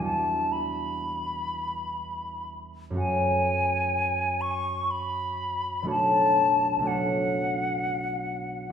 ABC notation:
X:1
M:3/4
L:1/8
Q:1/4=62
K:F#m
V:1 name="Flute"
a b4 z | g3 c' b2 | a2 f4 |]
V:2 name="Harp"
[E,,=G,DFf]6 | [F,,A,CFf]6 | [B,,,A,DFc]2 [B,,,A,DFc]4 |]